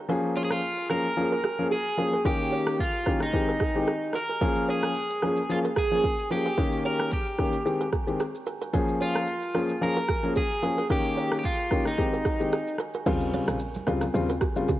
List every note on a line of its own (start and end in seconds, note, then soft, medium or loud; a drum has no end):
0.09 0.59 F3 medium
0.09 0.59 A#3 medium
0.09 0.59 C#4 medium
0.09 0.59 G#4 loud
0.09 0.17 A#4 medium
0.36 0.44 F4 loud
0.36 0.44 C#5 medium
0.45 0.51 G#4 medium
0.51 0.90 F4 medium
0.51 cross-stick loud
0.90 1.05 F3 medium
0.90 1.05 A#3 medium
0.90 1.06 C#4 medium
0.90 1.06 G#4 medium
0.90 0.98 A#4 medium
0.90 1.67 A#4 loud
0.90 cross-stick medium
1.17 1.32 F3 medium
1.17 1.32 A#3 medium
1.17 1.33 C#4 medium
1.17 1.33 G#4 loud
1.32 1.39 A#4 medium
1.44 1.52 G#4 medium
1.44 cross-stick medium
1.59 1.72 F3 medium
1.59 1.72 A#3 medium
1.59 1.72 C#4 medium
1.59 1.72 G#4 medium
1.71 1.79 G#4 medium
1.71 2.26 G#4 loud
1.97 2.13 F3 medium
1.97 2.13 A#3 medium
1.97 2.14 C#4 medium
1.97 2.14 G#4 medium
1.97 2.06 A#4 medium
2.13 2.20 A#4 medium
2.25 2.75 D#3 medium
2.25 2.75 A#3 medium
2.25 2.75 C#4 medium
2.25 2.75 G4 loud
2.25 2.81 G4 medium
2.25 2.33 A#4 medium
2.25 kick loud
2.53 2.60 C#5 medium
2.67 cross-stick loud
2.79 3.22 F4 medium
2.79 kick medium
3.06 3.21 D#3 medium
3.06 3.22 A#3 medium
3.06 3.22 C#4 medium
3.06 3.22 G4 medium
3.06 3.14 A#4 medium
3.06 kick medium
3.06 cross-stick medium
3.20 4.18 D#4 medium
3.20 cross-stick medium
3.33 3.48 D#3 medium
3.33 3.49 G#3 medium
3.33 3.49 C4 medium
3.33 3.49 G4 medium
3.33 kick medium
3.49 3.55 A#4 medium
3.60 3.68 G#4 medium
3.60 kick medium
3.60 cross-stick medium
3.75 3.88 D#3 medium
3.75 3.88 G#3 medium
3.75 3.88 C4 medium
3.75 3.88 G4 medium
3.88 3.95 G#4 medium
3.88 cross-stick medium
4.13 4.22 A#4 medium
4.13 4.70 A#4 loud
4.13 cross-stick medium
4.30 4.36 A#4 medium
4.41 4.91 F3 medium
4.41 4.91 A#3 medium
4.41 4.92 C#4 medium
4.41 4.92 G#4 loud
4.41 4.49 A#4 loud
4.41 kick loud
4.41 shaker medium
4.55 shaker medium
4.69 5.53 G#4 loud
4.69 4.76 C#5 medium
4.83 cross-stick loud
4.83 shaker medium
4.94 shaker medium
5.10 shaker soft
5.22 5.38 F3 medium
5.22 5.38 A#3 medium
5.22 5.38 C#4 medium
5.22 5.38 G#4 medium
5.22 5.30 A#4 medium
5.22 cross-stick medium
5.36 shaker medium
5.49 5.65 F3 medium
5.49 5.65 A#3 medium
5.49 5.65 C#4 medium
5.49 5.58 F4 medium
5.49 5.65 G#4 medium
5.49 shaker medium
5.65 5.73 A#4 medium
5.65 shaker medium
5.76 5.84 G#4 medium
5.76 6.31 G#4 medium
5.76 kick medium
5.76 cross-stick loud
5.76 shaker soft
5.91 6.04 F3 medium
5.91 6.04 A#3 medium
5.91 6.04 C#4 medium
5.91 6.04 G#4 medium
5.91 shaker soft
6.04 6.12 G#4 medium
6.04 kick medium
6.04 shaker medium
6.19 shaker soft
6.30 6.46 F3 medium
6.30 6.46 A#3 medium
6.30 6.46 C#4 medium
6.30 6.85 G4 medium
6.30 6.46 G#4 medium
6.30 6.39 A#4 medium
6.30 shaker medium
6.45 6.52 A#4 medium
6.45 shaker medium
6.57 7.08 D#3 medium
6.57 7.08 A#3 medium
6.57 7.08 C#4 medium
6.57 7.08 G4 loud
6.57 6.65 A#4 medium
6.57 kick loud
6.57 shaker medium
6.72 shaker soft
6.85 7.13 A#4 medium
6.85 6.93 C#5 medium
6.99 cross-stick loud
6.99 shaker medium
7.11 7.89 G4 medium
7.11 kick medium
7.11 shaker medium
7.26 shaker medium
7.38 7.54 D#3 medium
7.38 7.54 A#3 medium
7.38 7.54 C#4 medium
7.38 7.54 G4 medium
7.38 7.47 A#4 medium
7.38 kick loud
7.38 cross-stick medium
7.53 shaker medium
7.65 7.81 D#3 medium
7.65 7.81 G#3 medium
7.65 7.81 C4 medium
7.65 7.81 G4 medium
7.65 shaker medium
7.81 7.87 A#4 medium
7.81 shaker medium
7.93 8.01 G#4 medium
7.93 kick medium
7.93 cross-stick medium
7.93 shaker soft
8.07 8.20 D#3 medium
8.07 8.20 G#3 medium
8.07 8.20 C4 medium
8.07 8.20 G4 medium
8.07 shaker soft
8.20 8.28 G#4 medium
8.20 cross-stick medium
8.20 shaker medium
8.35 shaker soft
8.47 8.55 A#4 medium
8.47 shaker medium
8.62 8.68 A#4 medium
8.62 shaker medium
8.73 9.24 F3 medium
8.73 9.24 A#3 medium
8.73 9.24 C#4 medium
8.73 9.24 G#4 loud
8.73 8.82 A#4 loud
8.73 kick loud
8.73 shaker medium
8.88 shaker medium
9.01 9.85 F4 medium
9.01 9.09 C#5 medium
9.16 cross-stick loud
9.16 shaker medium
9.27 shaker medium
9.43 shaker soft
9.55 9.70 F3 medium
9.55 9.70 A#3 medium
9.55 9.70 C#4 medium
9.55 9.70 G#4 medium
9.55 9.63 A#4 medium
9.55 cross-stick medium
9.69 shaker medium
9.81 9.97 F3 medium
9.81 9.97 A#3 medium
9.81 9.97 C#4 medium
9.81 9.97 G#4 medium
9.81 10.33 A#4 loud
9.81 shaker medium
9.97 10.03 A#4 medium
9.97 shaker medium
10.09 10.17 G#4 medium
10.09 kick medium
10.09 cross-stick loud
10.09 shaker medium
10.23 10.36 F3 medium
10.23 10.36 A#3 medium
10.23 10.37 C#4 medium
10.23 10.37 G#4 medium
10.23 shaker soft
10.36 10.44 G#4 medium
10.36 10.87 G#4 medium
10.36 kick medium
10.36 shaker medium
10.51 shaker soft
10.62 10.78 F3 medium
10.62 10.78 A#3 medium
10.62 10.78 C#4 medium
10.62 10.78 G#4 medium
10.62 10.71 A#4 medium
10.62 shaker medium
10.78 10.84 A#4 medium
10.78 shaker medium
10.90 11.40 D#3 medium
10.90 11.40 A#3 medium
10.90 11.40 C#4 medium
10.90 11.40 G4 loud
10.90 11.38 G4 loud
10.90 10.98 A#4 loud
10.90 kick loud
10.90 shaker medium
11.04 shaker soft
11.17 11.25 C#5 medium
11.17 shaker soft
11.32 cross-stick loud
11.32 shaker medium
11.39 11.45 G4 medium
11.43 11.84 F4 medium
11.43 kick medium
11.43 shaker medium
11.59 shaker medium
11.71 11.86 D#3 medium
11.71 11.86 A#3 medium
11.71 11.87 C#4 medium
11.71 11.87 G4 medium
11.71 11.79 A#4 medium
11.71 kick medium
11.71 cross-stick medium
11.85 12.76 D#4 medium
11.85 cross-stick medium
11.85 shaker medium
11.98 12.13 D#3 medium
11.98 12.14 G#3 medium
11.98 12.14 C4 medium
11.98 12.14 G4 medium
11.98 kick medium
11.98 shaker medium
12.13 12.20 A#4 medium
12.13 shaker medium
12.25 12.33 G#4 medium
12.25 kick medium
12.25 cross-stick medium
12.25 shaker soft
12.40 12.53 D#3 medium
12.40 12.53 G#3 medium
12.40 12.53 C4 medium
12.40 12.53 G4 medium
12.40 shaker medium
12.52 12.60 G#4 medium
12.52 cross-stick medium
12.52 shaker medium
12.67 shaker soft
12.78 12.87 A#4 medium
12.78 cross-stick medium
12.78 shaker medium
12.94 13.01 A#4 medium
12.94 shaker medium
13.06 13.40 D#2 loud
13.06 13.56 C#3 medium
13.06 13.56 G3 medium
13.06 13.56 C4 medium
13.06 13.56 F4 loud
13.06 13.15 A#4 loud
13.06 kick loud
13.06 crash loud
13.06 low conga medium
13.06 shaker medium
13.20 shaker medium
13.33 13.41 C#5 medium
13.33 high conga medium
13.33 shaker medium
13.48 13.80 A#1 medium
13.48 cross-stick loud
13.48 shaker medium
13.59 shaker medium
13.75 high conga medium
13.75 shaker medium
13.87 14.09 C#2 medium
13.87 14.02 C#3 medium
13.87 14.03 G3 medium
13.87 14.03 C4 medium
13.87 14.03 F4 medium
13.87 13.95 A#4 medium
13.87 cross-stick medium
13.87 low conga medium
13.87 shaker medium
14.01 cross-stick medium
14.01 high conga medium
14.01 shaker loud
14.14 14.48 D#2 loud
14.14 14.30 C#3 medium
14.14 14.30 G3 medium
14.14 14.30 C4 medium
14.14 14.30 F4 loud
14.14 shaker medium
14.29 14.36 A#4 medium
14.29 shaker medium
14.41 14.49 G4 medium
14.41 kick medium
14.41 cross-stick loud
14.41 shaker medium
14.56 14.69 C#3 medium
14.56 14.69 G3 medium
14.56 14.69 C4 medium
14.56 14.69 F4 medium
14.56 high conga medium
14.56 shaker medium
14.68 14.77 G4 medium
14.68 kick medium
14.68 low conga medium
14.68 shaker medium